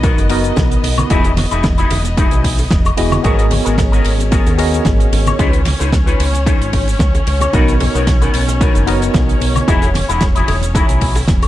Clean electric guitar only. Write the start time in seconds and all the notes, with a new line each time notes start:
0.03 B3 D#4 F#4 A#4
0.83 muted clean electric guitar stroke
1.10 D#4 E4 F#4 G#4
1.51 D#4 E4 F#4 G#4
1.78 D#4 E4 F#4 G#4
2.17 D#4 E4 F#4 G#4
2.98 muted clean electric guitar stroke
3.24 B3 F#4 G#4 A#4
3.65 B3 F#4 G#4 A#4
3.92 B3 F#4 G#4 A#4
4.31 B3 F#4 G#4 A#4
5.12 muted clean electric guitar stroke
5.38 C#4 D#4 F4 B4
5.79 C#4 D#4 F4 B4
6.06 C#4 D#4 F4 B4
6.46 C#4 D#4 F4 C#5
7.27 muted clean electric guitar stroke
7.53 B3 D#4 F#4 A#4
7.95 B3 D#4 F#4 A#4
8.21 B3 D#4 F#4 A#4
8.61 B3 D#4 F#4 A#4
9.41 muted clean electric guitar stroke
9.68 D#4 E4 F#4 G#4
10.09 D#4 E4 F#4 G#4
10.35 D#4 E4 F#4 G#4
10.74 D#4 E4 F#4 G#4